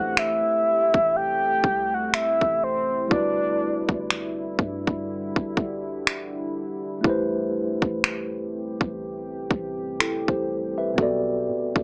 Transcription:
Already playing: 808-style bass A1, ambient pad C3 A3 G4, tine electric piano A3 E4 G4 A4 C5, soft synth lead F#5
0.17 soft synth lead E5, finger snap
0.94 808-style bass A1, kick
1.14 ambient pad E4, soft synth lead G5
1.64 808-style bass C2, kick
1.94 soft synth lead F#5
2.08 soft synth lead F#5
2.14 soft synth lead E5, finger snap
2.41 808-style bass A1, kick
2.63 soft synth lead C5
3.08 808-style bass G1, ambient pad D3 G3, tine electric piano G3 E4, kick
3.12 tine electric piano F#4 B4, soft synth lead D5
3.16 tine electric piano D5
3.89 808-style bass G1, kick
4.10 808-style bass G1, finger snap
4.59 808-style bass G2, kick
4.87 kick
5.36 808-style bass G1, kick
5.57 kick
6.07 finger snap
7.01 808-style bass A1, ambient pad C3 A3 G4, tine electric piano A3 E4, kick
7.05 tine electric piano G4 B4
7.10 tine electric piano C5
7.82 808-style bass A1, kick
8.04 finger snap
8.81 808-style bass A1, kick
9.01 ambient pad G3
9.51 808-style bass A1, kick
10.00 tine electric piano E4 A4, finger snap
10.28 808-style bass A1, tine electric piano G4 C5, kick
10.78 tine electric piano B4 E5
10.94 tine electric piano B2 B3
10.98 808-style bass B1, ambient pad B2 A3 D4, tine electric piano F#4 A4, kick
11.03 tine electric piano D5
11.48 808-style bass B2
11.76 808-style bass B1, kick

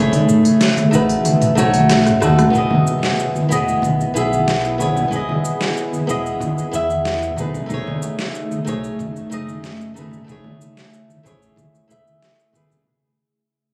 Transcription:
Already playing: nylon-string guitar A3 E4 G#4, ambient pad A3
0.00 nylon-string guitar C#5
0.12 open hi-hat, high conga, low conga, shaker
0.29 mid tom, shaker
0.45 open hi-hat, shaker
0.61 snare, open hi-hat, shaker
0.77 open hi-hat, high conga, shaker
0.91 analog synth bass A1, nylon-string guitar A3 D#4 F#4 B4, kick, shaker
1.09 open hi-hat, shaker
1.25 open hi-hat, high conga, shaker
1.42 mid tom, open hi-hat, shaker
1.55 analog synth bass B1, nylon-string guitar A3 D#4 F#4 C#5, shaker
1.74 open hi-hat, high conga, shaker
1.90 cross-stick, snare, open hi-hat, shaker
2.06 analog synth bass F#1, cross-stick, mid tom, open hi-hat, shaker
2.20 analog synth bass D#2, nylon-string guitar A3 D#4 F#4 A4, cross-stick, high conga, shaker
2.39 cross-stick, open hi-hat, low conga, shaker
2.50 nylon-string guitar B3 E4, kick, impact
2.54 analog synth bass E1, ambient pad B3 E4 G#4, nylon-string guitar G#4 D#5, shaker
2.71 high conga, low conga
2.87 shaker
3.03 snare, shaker
3.20 shaker
3.35 high conga, shaker
3.49 analog synth bass E1, nylon-string guitar B3 E4 G#4 D#5, shaker
3.68 shaker
3.82 analog synth bass B1, kick, high conga, shaker
4.01 shaker
4.14 analog synth bass B1, nylon-string guitar B3 E4 G#4 E5, shaker
4.32 high conga, shaker
4.48 snare, shaker
4.65 shaker
4.78 nylon-string guitar B3 E4 G#4 C#5, high conga, shaker
4.96 low conga, shaker
5.08 analog synth bass E1, nylon-string guitar B3 E4
5.12 nylon-string guitar G#4 D#5, kick, shaker
5.29 high conga, low conga
5.45 shaker
5.61 snare, shaker
5.77 shaker
5.93 high conga, shaker
6.07 analog synth bass E1, nylon-string guitar B3 E4 G#4 D#5, shaker
6.26 shaker
6.40 kick, high conga, shaker
6.58 shaker
6.71 analog synth bass E2, nylon-string guitar B3 E4 G#4 E5, shaker
6.89 high conga, shaker
7.05 snare, shaker
7.23 shaker
7.36 analog synth bass B1, ambient pad C#3 A3 D#4, nylon-string guitar A3 D#4 G#4 B4, kick, high conga, shaker
7.54 low conga, shaker
7.66 nylon-string guitar A3 D#4
7.70 analog synth bass B1, nylon-string guitar G#4 C#5, kick, shaker
7.87 high conga, low conga
8.02 shaker
8.19 snare, shaker
8.35 shaker
8.52 high conga, shaker
8.65 analog synth bass B1, nylon-string guitar A3 D#4 G#4 C#5, shaker
8.84 shaker
8.99 analog synth bass F#1, kick, high conga, shaker
9.16 shaker
9.30 analog synth bass F#1, nylon-string guitar A3 D#4 G#4 D#5, shaker
9.47 high conga, shaker
9.64 snare, shaker
9.81 shaker
9.94 nylon-string guitar A3 D#4 G#4 B4, high conga, shaker
10.12 low conga, shaker
10.24 analog synth bass A1, nylon-string guitar A3 E4, ambient pad E4, kick
10.29 nylon-string guitar G#4 C#5, shaker
10.44 high conga, low conga
10.61 shaker
10.77 snare, shaker
10.93 shaker
11.10 high conga, shaker
11.23 analog synth bass A1, nylon-string guitar A3 E4 G#4 C#5, kick, shaker
11.42 shaker
11.56 kick, high conga, shaker
11.75 shaker
11.88 analog synth bass E1, nylon-string guitar A3 E4 G#4 E5, shaker
12.05 high conga, shaker
12.22 snare, shaker
12.40 shaker
12.53 nylon-string guitar A3 E4 G#4 B4, kick, high conga, shaker
12.70 low conga, shaker

